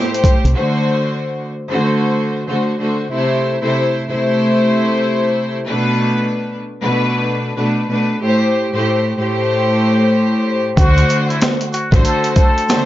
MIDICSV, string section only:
0, 0, Header, 1, 2, 480
1, 0, Start_track
1, 0, Tempo, 638298
1, 421, Time_signature, 4, 2, 24, 8
1, 9665, End_track
2, 0, Start_track
2, 0, Title_t, "String section"
2, 0, Program_c, 0, 48
2, 0, Note_on_c, 0, 45, 111
2, 0, Note_on_c, 0, 57, 102
2, 0, Note_on_c, 0, 67, 106
2, 0, Note_on_c, 0, 72, 116
2, 346, Note_off_c, 0, 45, 0
2, 347, Note_off_c, 0, 57, 0
2, 348, Note_off_c, 0, 67, 0
2, 350, Note_off_c, 0, 72, 0
2, 418, Note_on_c, 0, 50, 95
2, 420, Note_on_c, 0, 57, 89
2, 423, Note_on_c, 0, 66, 92
2, 426, Note_on_c, 0, 72, 111
2, 1095, Note_off_c, 0, 50, 0
2, 1097, Note_off_c, 0, 57, 0
2, 1098, Note_off_c, 0, 66, 0
2, 1099, Note_off_c, 0, 72, 0
2, 1282, Note_on_c, 0, 50, 98
2, 1285, Note_on_c, 0, 57, 86
2, 1287, Note_on_c, 0, 66, 88
2, 1290, Note_on_c, 0, 72, 99
2, 1821, Note_off_c, 0, 50, 0
2, 1822, Note_off_c, 0, 57, 0
2, 1823, Note_off_c, 0, 66, 0
2, 1825, Note_off_c, 0, 72, 0
2, 1864, Note_on_c, 0, 50, 78
2, 1867, Note_on_c, 0, 57, 75
2, 1869, Note_on_c, 0, 66, 72
2, 1871, Note_on_c, 0, 72, 82
2, 2088, Note_off_c, 0, 50, 0
2, 2089, Note_off_c, 0, 57, 0
2, 2090, Note_off_c, 0, 66, 0
2, 2091, Note_off_c, 0, 72, 0
2, 2101, Note_on_c, 0, 50, 73
2, 2103, Note_on_c, 0, 57, 67
2, 2106, Note_on_c, 0, 66, 66
2, 2108, Note_on_c, 0, 72, 76
2, 2322, Note_off_c, 0, 57, 0
2, 2326, Note_off_c, 0, 50, 0
2, 2327, Note_off_c, 0, 72, 0
2, 2329, Note_off_c, 0, 66, 0
2, 2329, Note_on_c, 0, 48, 103
2, 2331, Note_on_c, 0, 57, 86
2, 2334, Note_on_c, 0, 64, 86
2, 2336, Note_on_c, 0, 72, 103
2, 2687, Note_off_c, 0, 48, 0
2, 2688, Note_off_c, 0, 57, 0
2, 2690, Note_off_c, 0, 64, 0
2, 2691, Note_off_c, 0, 72, 0
2, 2715, Note_on_c, 0, 48, 96
2, 2717, Note_on_c, 0, 57, 84
2, 2720, Note_on_c, 0, 64, 89
2, 2722, Note_on_c, 0, 72, 106
2, 3032, Note_off_c, 0, 48, 0
2, 3033, Note_off_c, 0, 57, 0
2, 3034, Note_off_c, 0, 64, 0
2, 3036, Note_off_c, 0, 72, 0
2, 3074, Note_on_c, 0, 48, 96
2, 3076, Note_on_c, 0, 57, 101
2, 3079, Note_on_c, 0, 64, 96
2, 3081, Note_on_c, 0, 72, 119
2, 4194, Note_off_c, 0, 48, 0
2, 4195, Note_off_c, 0, 57, 0
2, 4197, Note_off_c, 0, 64, 0
2, 4198, Note_off_c, 0, 72, 0
2, 4257, Note_on_c, 0, 47, 106
2, 4260, Note_on_c, 0, 57, 87
2, 4262, Note_on_c, 0, 62, 89
2, 4264, Note_on_c, 0, 71, 114
2, 4935, Note_off_c, 0, 47, 0
2, 4936, Note_off_c, 0, 57, 0
2, 4937, Note_off_c, 0, 62, 0
2, 4938, Note_off_c, 0, 71, 0
2, 5133, Note_on_c, 0, 47, 98
2, 5135, Note_on_c, 0, 57, 88
2, 5137, Note_on_c, 0, 62, 80
2, 5140, Note_on_c, 0, 71, 111
2, 5666, Note_off_c, 0, 47, 0
2, 5667, Note_off_c, 0, 57, 0
2, 5668, Note_off_c, 0, 62, 0
2, 5670, Note_off_c, 0, 71, 0
2, 5687, Note_on_c, 0, 47, 82
2, 5690, Note_on_c, 0, 57, 73
2, 5693, Note_on_c, 0, 62, 75
2, 5695, Note_on_c, 0, 71, 83
2, 5919, Note_off_c, 0, 47, 0
2, 5921, Note_off_c, 0, 57, 0
2, 5922, Note_off_c, 0, 62, 0
2, 5923, Note_off_c, 0, 71, 0
2, 5933, Note_on_c, 0, 47, 69
2, 5935, Note_on_c, 0, 57, 68
2, 5938, Note_on_c, 0, 62, 71
2, 5940, Note_on_c, 0, 71, 86
2, 6160, Note_off_c, 0, 57, 0
2, 6162, Note_off_c, 0, 47, 0
2, 6165, Note_off_c, 0, 62, 0
2, 6166, Note_off_c, 0, 71, 0
2, 6167, Note_on_c, 0, 45, 96
2, 6169, Note_on_c, 0, 57, 82
2, 6171, Note_on_c, 0, 67, 92
2, 6174, Note_on_c, 0, 72, 110
2, 6526, Note_off_c, 0, 45, 0
2, 6528, Note_off_c, 0, 57, 0
2, 6529, Note_off_c, 0, 67, 0
2, 6530, Note_off_c, 0, 72, 0
2, 6567, Note_on_c, 0, 45, 93
2, 6569, Note_on_c, 0, 57, 85
2, 6572, Note_on_c, 0, 67, 88
2, 6575, Note_on_c, 0, 72, 102
2, 6878, Note_off_c, 0, 45, 0
2, 6879, Note_off_c, 0, 57, 0
2, 6881, Note_off_c, 0, 67, 0
2, 6882, Note_off_c, 0, 72, 0
2, 6900, Note_on_c, 0, 45, 99
2, 6902, Note_on_c, 0, 57, 98
2, 6904, Note_on_c, 0, 67, 95
2, 6907, Note_on_c, 0, 72, 106
2, 8027, Note_off_c, 0, 45, 0
2, 8028, Note_off_c, 0, 57, 0
2, 8029, Note_off_c, 0, 67, 0
2, 8030, Note_off_c, 0, 72, 0
2, 8098, Note_on_c, 0, 50, 101
2, 8100, Note_on_c, 0, 57, 92
2, 8103, Note_on_c, 0, 66, 100
2, 8105, Note_on_c, 0, 72, 117
2, 8775, Note_off_c, 0, 50, 0
2, 8777, Note_off_c, 0, 57, 0
2, 8778, Note_off_c, 0, 66, 0
2, 8779, Note_off_c, 0, 72, 0
2, 8961, Note_on_c, 0, 50, 102
2, 8963, Note_on_c, 0, 57, 89
2, 8966, Note_on_c, 0, 66, 93
2, 8969, Note_on_c, 0, 72, 104
2, 9500, Note_off_c, 0, 50, 0
2, 9501, Note_off_c, 0, 57, 0
2, 9503, Note_off_c, 0, 66, 0
2, 9504, Note_off_c, 0, 72, 0
2, 9543, Note_on_c, 0, 50, 84
2, 9545, Note_on_c, 0, 57, 79
2, 9548, Note_on_c, 0, 66, 76
2, 9551, Note_on_c, 0, 72, 92
2, 9665, Note_off_c, 0, 50, 0
2, 9665, Note_off_c, 0, 57, 0
2, 9665, Note_off_c, 0, 66, 0
2, 9665, Note_off_c, 0, 72, 0
2, 9665, End_track
0, 0, End_of_file